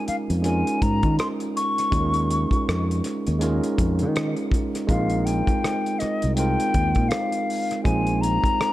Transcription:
Already playing: tine electric piano G#3 C#4 D#4 F4 A#4
0.08 flute F5, muted fingered electric bass stroke, closed hi-hat
0.30 fingered electric bass F2, closed hi-hat
0.42 tine electric piano G#3 C#4 D#4 F4 A#4, flute G#5, closed hi-hat
0.67 closed hi-hat
0.82 fingered electric bass G#2, flute A#5, kick, closed hi-hat
1.03 fingered electric bass D#3, kick, closed hi-hat
1.19 flute C6, cross-stick, closed hi-hat
1.40 closed hi-hat
1.57 flute C#6, closed hi-hat
1.78 cross-stick, closed hi-hat
1.91 fingered electric bass D#2, tine electric piano G#3 C#4 D#4 F4 G#4, kick, closed hi-hat
2.01 tine electric piano A#4
2.14 closed hi-hat
2.31 closed hi-hat
2.51 muted fingered electric bass stroke, kick, closed hi-hat
2.68 fingered electric bass F2, cross-stick, closed hi-hat
2.91 closed hi-hat
3.04 cross-stick, closed hi-hat
3.27 fingered electric bass D#2, closed hi-hat
3.39 tine electric piano G#3 C#4 D#4 F4 A#4, closed hi-hat
3.64 closed hi-hat
3.78 fingered electric bass F2, kick, closed hi-hat
3.99 fingered electric bass D#3, closed hi-hat
4.16 cross-stick, closed hi-hat
4.37 closed hi-hat
4.52 kick, closed hi-hat
4.75 cross-stick, closed hi-hat
4.87 fingered electric bass A#1, tine electric piano G#3 C4 D#4 F4 A#4, flute F5, kick, closed hi-hat
5.10 closed hi-hat
5.25 flute G5, closed hi-hat
5.47 muted fingered electric bass stroke, kick, closed hi-hat
5.64 cross-stick, closed hi-hat
5.86 closed hi-hat
5.99 flute D#5, muted fingered electric bass stroke, cross-stick, closed hi-hat
6.22 fingered electric bass C2, closed hi-hat
6.36 tine electric piano G#3 C4 D#4 F4 A#4, flute G5, closed hi-hat
6.60 closed hi-hat
6.74 fingered electric bass D#2, kick, closed hi-hat
6.95 fingered electric bass A#2, kick, closed hi-hat
7.09 flute F5, cross-stick, closed hi-hat
7.32 closed hi-hat
7.50 open hi-hat
7.71 cross-stick, closed hi-hat
7.84 fingered electric bass A#1, tine electric piano G#3 C4 D#4 F4 C5, flute G#5, kick, closed hi-hat
8.07 closed hi-hat
8.21 flute A#5, closed hi-hat
8.44 muted fingered electric bass stroke, kick, closed hi-hat
8.61 cross-stick, closed hi-hat

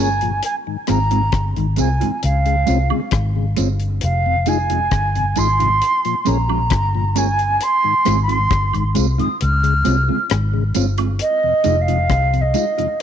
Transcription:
Already playing: fingered electric bass G1
0.00 clean electric guitar F4, flute G#5
0.21 tonewheel organ A#2 F3, closed hi-hat
0.43 flute G#5, closed hi-hat
0.67 tonewheel organ G#2 D#3
0.87 fingered electric bass G#1, clean electric guitar G#3 C4 F4, tonewheel organ G#3 C4 F4, flute A#5, cross-stick, closed hi-hat, tambourine
1.11 tonewheel organ G#2 D#3, clean electric guitar G#3 C4 F4, closed hi-hat
1.32 fingered electric bass G1, kick, cross-stick, closed hi-hat
1.56 fingered electric bass G#1, tonewheel organ G#2 D#3, closed hi-hat
1.76 fingered electric bass C2, clean electric guitar G#3 C4 F4, tonewheel organ G#3 C4 F4, flute G#5, closed hi-hat, tambourine
2.00 tonewheel organ G#2 D#3, clean electric guitar G#3 C4 F4, closed hi-hat
2.23 fingered electric bass C#2, flute F5, closed hi-hat
2.46 tonewheel organ C#3 G#3, closed hi-hat
2.66 fingered electric bass C2, clean electric guitar G#3 C4 F4, tonewheel organ C4 C#4 F4, closed hi-hat, tambourine
2.90 tonewheel organ C#3 G#3, clean electric guitar G#3 C4 F4, high woodblock
3.11 fingered electric bass G#1, kick, cross-stick, closed hi-hat
3.36 tonewheel organ C#3 G#3
3.57 fingered electric bass G1, clean electric guitar G#3 C4 F4, tonewheel organ C4 C#4 F4, closed hi-hat, tambourine
3.80 closed hi-hat
4.01 fingered electric bass F1, flute F5, closed hi-hat
4.26 tonewheel organ F2 C3
4.46 clean electric guitar G#3 D#4 F4, tonewheel organ G#3 D#4 F4, flute G#5, closed hi-hat, tambourine
4.70 tonewheel organ F2 C3, clean electric guitar G#3 D#4 F4, closed hi-hat
4.91 fingered electric bass G1, kick, cross-stick, closed hi-hat
5.15 tonewheel organ F2 C3, closed hi-hat
5.36 fingered electric bass G#1, clean electric guitar G#3 D#4 F4, tonewheel organ G#3 D#4 F4, flute C6, closed hi-hat, tambourine
5.59 tonewheel organ F2 C3, clean electric guitar G#3 D#4 F4, closed hi-hat
5.82 closed hi-hat
6.05 tonewheel organ A#2 F3, closed hi-hat
6.25 fingered electric bass A#1, clean electric guitar G#3 C#4 F4, tonewheel organ A#3 C#4 G#4, flute A#5, closed hi-hat, tambourine
6.49 tonewheel organ A#2 F3, clean electric guitar G#3 C#4 F4, high woodblock
6.70 fingered electric bass G1, kick, cross-stick, closed hi-hat
6.95 tonewheel organ A#2 F3
7.15 clean electric guitar G#3 C#4 F4, tonewheel organ A#3 C#4 G#4, flute G#5, closed hi-hat, tambourine
7.39 closed hi-hat
7.61 flute C6, closed hi-hat
7.84 tonewheel organ G#2 D#3
8.05 fingered electric bass G#1, tonewheel organ G#3 C4 F4, clean electric guitar G#3 C4 F4, cross-stick, closed hi-hat, tambourine
8.22 flute C6
8.28 tonewheel organ G#2 D#3, clean electric guitar G#3 C4 F4, closed hi-hat
8.51 fingered electric bass G1, kick, cross-stick, closed hi-hat
8.73 fingered electric bass G#1, tonewheel organ G#2 D#3, closed hi-hat, high woodblock
8.95 fingered electric bass C2, clean electric guitar G#3 C4 F4, tonewheel organ G#3 C4 F4, closed hi-hat, tambourine
9.18 tonewheel organ G#2 D#3, clean electric guitar G#3 C4 F4, flute D#6, closed hi-hat
9.41 fingered electric bass C#2, flute F6, closed hi-hat
9.63 tonewheel organ C#3 G#3, closed hi-hat
9.85 fingered electric bass C2, clean electric guitar G#3 C4 F4, tonewheel organ C4 C#4 F4, closed hi-hat, tambourine
10.08 tonewheel organ C#3 G#3, clean electric guitar G#3 C4 F4
10.30 fingered electric bass G#1, cross-stick, closed hi-hat
10.54 tonewheel organ C#3 G#3
10.75 fingered electric bass G1, clean electric guitar G#3 C4 F4, tonewheel organ C4 C#4 F4, closed hi-hat, tambourine
10.98 clean electric guitar G#3 C4 F4, closed hi-hat, high woodblock
11.19 flute D#5, closed hi-hat
11.44 tonewheel organ F2 C3
11.64 fingered electric bass F1, clean electric guitar G#3 D#4 F4, tonewheel organ G#3 D#4 F4, closed hi-hat, tambourine
11.81 flute F5
11.88 tonewheel organ F2 C3, clean electric guitar G#3 D#4 F4, closed hi-hat
12.10 fingered electric bass C2, kick, cross-stick, closed hi-hat
12.33 tonewheel organ F2 C3, closed hi-hat
12.41 flute D#5
12.54 clean electric guitar G#3 D#4 F4, tonewheel organ G#3 D#4 F4, closed hi-hat, tambourine
12.78 tonewheel organ F2 C3, clean electric guitar G#3 D#4 F4, closed hi-hat

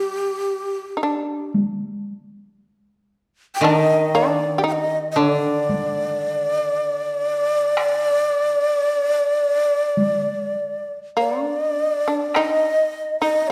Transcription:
Already playing: shamisen G3, shakuhachi G4
0.97 shamisen D#4
1.03 shamisen D4
1.54 taiko high
3.55 shakuhachi G5
3.61 koto D#3, shamisen D4, shakuhachi D#5, taiko rim
3.76 shamisen D#4
4.15 shamisen D4, shakuhachi D5
4.58 shamisen G4
4.64 shamisen D#4
4.68 shakuhachi G5
4.72 shakuhachi D#5
5.11 shakuhachi D#5
5.16 koto D3, shamisen D4, shakuhachi D5
5.69 taiko high
7.77 taiko rim
9.97 taiko high
11.17 shamisen A#3, shakuhachi D5
11.45 shamisen D4
12.08 shamisen D4
12.35 shamisen D#4, shakuhachi D#5, taiko rim
13.20 shamisen D#4, shakuhachi D#5
13.47 shakuhachi C#5

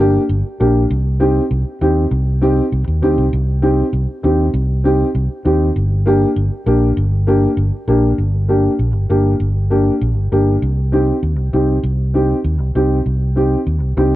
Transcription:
Already playing: fingered electric bass G1
0.00 upright piano A#3 D4 G4
0.29 fingered electric bass G1
0.59 fingered electric bass A#1, upright piano A#3 D4 G4
0.90 fingered electric bass C2
1.20 upright piano C4 D#4 G4
1.51 fingered electric bass C2
1.81 fingered electric bass D#2, upright piano C4 D#4 G4
2.11 fingered electric bass C2
2.41 upright piano C4 D#4 G4
2.72 fingered electric bass C2
2.88 fingered electric bass D#2
3.02 fingered electric bass D2, upright piano C4 D#4 G4
3.18 fingered electric bass C2
3.33 fingered electric bass C2
3.62 upright piano C4 D#4 G4
3.93 fingered electric bass C2
4.23 fingered electric bass D#2, upright piano C4 D#4 G4
4.54 fingered electric bass C2
4.84 upright piano C4 D#4 G4
5.15 fingered electric bass C2
5.45 fingered electric bass D#2, upright piano C4 D#4 G4
5.76 fingered electric bass G1
6.06 upright piano A#3 D4 G4
6.36 fingered electric bass G1
6.66 fingered electric bass A#1, upright piano A#3 D4 G4
6.97 fingered electric bass G1
7.27 upright piano A#3 D4 G4
7.57 fingered electric bass G1
7.88 fingered electric bass A#1, upright piano A#3 D4 G4
8.18 fingered electric bass G1
8.49 upright piano A#3 D4 G4
8.79 fingered electric bass A#1
8.94 fingered electric bass G1
9.09 fingered electric bass G1, upright piano A#3 D4 G4
9.40 fingered electric bass G1
9.70 upright piano A#3 D4 G4
10.01 fingered electric bass A#1
10.16 fingered electric bass G1
10.31 fingered electric bass G1, upright piano A#3 D4 G4
10.62 fingered electric bass C2
10.92 upright piano C4 D#4 G4
11.23 fingered electric bass D#2
11.38 fingered electric bass C2
11.53 fingered electric bass C2, upright piano C4 D#4 G4
11.84 fingered electric bass C2
12.14 upright piano C4 D#4 G4
12.45 fingered electric bass D#2
12.60 fingered electric bass C2
12.75 fingered electric bass C2, upright piano C4 D#4 G4
13.06 fingered electric bass C2
13.36 upright piano C4 D#4 G4
13.67 fingered electric bass D#2
13.82 fingered electric bass C2
13.97 fingered electric bass C2, upright piano C4 D#4 G4

